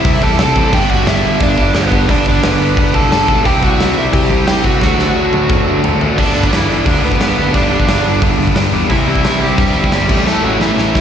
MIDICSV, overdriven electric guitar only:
0, 0, Header, 1, 2, 480
1, 0, Start_track
1, 0, Key_signature, 1, "major"
1, 0, Tempo, 340716
1, 1024, Time_signature, 4, 2, 24, 8
1, 15508, End_track
2, 0, Start_track
2, 0, Title_t, "Overdriven electric guitar"
2, 0, Program_c, 0, 29
2, 0, Note_on_c, 0, 64, 55
2, 0, Note_on_c, 0, 76, 95
2, 267, Note_off_c, 0, 64, 0
2, 321, Note_on_c, 0, 69, 82
2, 333, Note_on_c, 0, 81, 99
2, 336, Note_off_c, 0, 76, 0
2, 538, Note_off_c, 0, 69, 0
2, 541, Note_off_c, 0, 81, 0
2, 558, Note_on_c, 0, 69, 73
2, 562, Note_on_c, 0, 81, 81
2, 999, Note_off_c, 0, 69, 0
2, 1038, Note_off_c, 0, 81, 0
2, 1044, Note_on_c, 0, 79, 100
2, 1050, Note_on_c, 0, 67, 79
2, 1261, Note_off_c, 0, 67, 0
2, 1276, Note_off_c, 0, 79, 0
2, 1276, Note_on_c, 0, 78, 94
2, 1285, Note_on_c, 0, 66, 69
2, 1499, Note_off_c, 0, 66, 0
2, 1517, Note_off_c, 0, 78, 0
2, 1522, Note_on_c, 0, 76, 96
2, 1531, Note_on_c, 0, 64, 68
2, 1962, Note_off_c, 0, 64, 0
2, 2006, Note_off_c, 0, 76, 0
2, 2012, Note_on_c, 0, 74, 94
2, 2018, Note_on_c, 0, 62, 75
2, 2449, Note_off_c, 0, 62, 0
2, 2466, Note_on_c, 0, 71, 84
2, 2471, Note_off_c, 0, 74, 0
2, 2476, Note_on_c, 0, 59, 79
2, 2917, Note_off_c, 0, 59, 0
2, 2958, Note_on_c, 0, 74, 89
2, 2959, Note_off_c, 0, 71, 0
2, 2968, Note_on_c, 0, 62, 70
2, 3180, Note_off_c, 0, 62, 0
2, 3198, Note_off_c, 0, 74, 0
2, 3213, Note_on_c, 0, 62, 64
2, 3218, Note_on_c, 0, 74, 75
2, 3422, Note_off_c, 0, 74, 0
2, 3423, Note_off_c, 0, 62, 0
2, 3432, Note_on_c, 0, 71, 92
2, 3437, Note_on_c, 0, 59, 55
2, 4098, Note_off_c, 0, 59, 0
2, 4150, Note_on_c, 0, 81, 101
2, 4160, Note_off_c, 0, 71, 0
2, 4165, Note_on_c, 0, 69, 85
2, 4378, Note_off_c, 0, 69, 0
2, 4378, Note_off_c, 0, 81, 0
2, 4395, Note_on_c, 0, 81, 108
2, 4415, Note_on_c, 0, 69, 76
2, 4835, Note_off_c, 0, 81, 0
2, 4846, Note_off_c, 0, 69, 0
2, 4869, Note_on_c, 0, 79, 99
2, 4886, Note_on_c, 0, 67, 69
2, 5098, Note_off_c, 0, 67, 0
2, 5119, Note_off_c, 0, 79, 0
2, 5119, Note_on_c, 0, 78, 110
2, 5129, Note_on_c, 0, 66, 80
2, 5562, Note_off_c, 0, 66, 0
2, 5598, Note_on_c, 0, 76, 80
2, 5602, Note_off_c, 0, 78, 0
2, 5608, Note_on_c, 0, 64, 65
2, 5668, Note_off_c, 0, 76, 0
2, 5678, Note_off_c, 0, 64, 0
2, 5817, Note_on_c, 0, 79, 96
2, 5832, Note_on_c, 0, 67, 69
2, 6273, Note_off_c, 0, 67, 0
2, 6289, Note_off_c, 0, 79, 0
2, 6306, Note_on_c, 0, 79, 95
2, 6320, Note_on_c, 0, 67, 70
2, 6534, Note_off_c, 0, 67, 0
2, 6543, Note_off_c, 0, 79, 0
2, 6543, Note_on_c, 0, 78, 84
2, 6553, Note_on_c, 0, 66, 72
2, 8169, Note_off_c, 0, 66, 0
2, 8221, Note_off_c, 0, 78, 0
2, 8704, Note_on_c, 0, 74, 77
2, 8728, Note_on_c, 0, 62, 97
2, 9056, Note_off_c, 0, 74, 0
2, 9072, Note_off_c, 0, 62, 0
2, 9089, Note_on_c, 0, 62, 82
2, 9184, Note_off_c, 0, 62, 0
2, 9196, Note_on_c, 0, 52, 79
2, 9205, Note_on_c, 0, 64, 104
2, 9635, Note_off_c, 0, 52, 0
2, 9664, Note_off_c, 0, 64, 0
2, 9670, Note_on_c, 0, 62, 105
2, 9673, Note_on_c, 0, 74, 65
2, 9888, Note_off_c, 0, 74, 0
2, 9913, Note_off_c, 0, 62, 0
2, 9921, Note_on_c, 0, 59, 92
2, 9933, Note_on_c, 0, 71, 69
2, 10249, Note_off_c, 0, 71, 0
2, 10252, Note_off_c, 0, 59, 0
2, 10267, Note_on_c, 0, 59, 102
2, 10278, Note_on_c, 0, 71, 69
2, 10600, Note_off_c, 0, 59, 0
2, 10602, Note_off_c, 0, 71, 0
2, 10628, Note_on_c, 0, 62, 90
2, 10634, Note_on_c, 0, 74, 65
2, 11528, Note_off_c, 0, 62, 0
2, 11531, Note_off_c, 0, 74, 0
2, 12555, Note_on_c, 0, 52, 71
2, 12563, Note_on_c, 0, 64, 81
2, 12771, Note_off_c, 0, 52, 0
2, 12784, Note_off_c, 0, 64, 0
2, 12789, Note_on_c, 0, 52, 64
2, 12801, Note_on_c, 0, 64, 97
2, 13232, Note_off_c, 0, 52, 0
2, 13259, Note_on_c, 0, 55, 68
2, 13264, Note_off_c, 0, 64, 0
2, 13270, Note_on_c, 0, 67, 90
2, 14405, Note_off_c, 0, 55, 0
2, 14460, Note_off_c, 0, 67, 0
2, 14466, Note_on_c, 0, 69, 106
2, 14471, Note_on_c, 0, 57, 81
2, 14688, Note_off_c, 0, 69, 0
2, 14691, Note_off_c, 0, 57, 0
2, 14709, Note_on_c, 0, 54, 71
2, 14713, Note_on_c, 0, 66, 82
2, 14929, Note_off_c, 0, 66, 0
2, 14931, Note_off_c, 0, 54, 0
2, 14952, Note_on_c, 0, 64, 94
2, 14960, Note_on_c, 0, 52, 68
2, 15400, Note_off_c, 0, 52, 0
2, 15416, Note_off_c, 0, 64, 0
2, 15433, Note_on_c, 0, 64, 80
2, 15441, Note_on_c, 0, 52, 62
2, 15508, Note_off_c, 0, 52, 0
2, 15508, Note_off_c, 0, 64, 0
2, 15508, End_track
0, 0, End_of_file